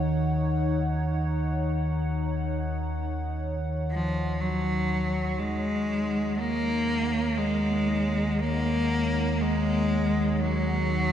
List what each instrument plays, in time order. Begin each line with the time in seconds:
Already playing: synth drone D#2 D#3, analog synth pad D#4 C#5 F#5
3.91 cello F3
4.41 cello F#3
5.39 synth drone D#2 D#3, cello G#3
6.40 cello A#3
7.38 cello G#3
8.40 cello A#3
9.41 cello G#3
10.42 cello F#3